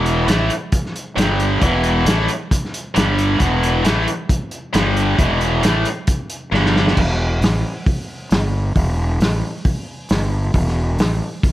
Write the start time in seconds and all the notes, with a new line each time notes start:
Already playing: E1 E2 B2 E3
0.06 closed hi-hat
0.26 A1 A2 E3 A3, snare, closed hi-hat
0.50 closed hi-hat
0.72 kick, closed hi-hat
0.85 snare
0.96 closed hi-hat
1.16 G1 G2 D3 G3, snare, closed hi-hat
1.40 closed hi-hat
1.61 E1 E2 B2 E3, kick, closed hi-hat
1.84 closed hi-hat
2.05 A1 A2 E3 A3, snare, closed hi-hat
2.19 snare
2.28 closed hi-hat
2.51 kick, closed hi-hat
2.64 snare
2.74 closed hi-hat
2.94 G1 G2 D3 G3, snare, closed hi-hat
3.18 closed hi-hat
3.39 E1 E2 B2 E3, kick, closed hi-hat
3.63 closed hi-hat
3.84 A1 A2 E3 A3, snare, closed hi-hat
4.08 closed hi-hat
4.29 kick, closed hi-hat
4.51 closed hi-hat
4.73 G1 G2 D3 G3, snare, closed hi-hat
4.97 closed hi-hat
5.17 E1 E2 B2 E3, kick, closed hi-hat
5.41 closed hi-hat
5.62 A1 A2 E3 A3, snare, closed hi-hat
5.85 closed hi-hat
6.07 kick, closed hi-hat
6.30 closed hi-hat
6.52 G1 G2 D3 G3, snare
6.65 snare
6.76 snare
6.88 snare
6.97 E1, kick, crash
7.10 snare
7.41 A1, snare, open hi-hat
7.86 kick, open hi-hat
8.31 G1, snare, open hi-hat
8.76 E1, kick, open hi-hat
9.20 A1, snare, open hi-hat
9.65 kick, open hi-hat
10.09 G1, snare, open hi-hat
10.54 E1, kick, open hi-hat
10.67 snare
10.98 A1, snare, open hi-hat
11.43 kick, open hi-hat